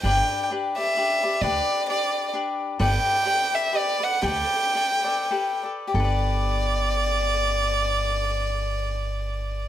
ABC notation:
X:1
M:3/4
L:1/8
Q:"Swing" 1/4=118
K:G
V:1 name="Violin"
g2 z e3 | d2 d2 z2 | g3 e d f | g4- g z |
d6- | d6 |]
V:2 name="Cavaquinho"
[DGBd]2 [DGBd] [GBd] [DGBd] [GBd] | [DGBd]2 [DGBd]2 [DGBd]2 | [GABd]2 [GABd]2 [GABd] [ABd] | [GABd]2 [GABd] [ABd] [GABd] [ABd] |
[GABd]6- | [GABd]6 |]
V:3 name="Upright bass" clef=bass
G,,, z4 z | D,, z4 z | G,,, z4 z | D,, z4 z |
G,,,6- | G,,,6 |]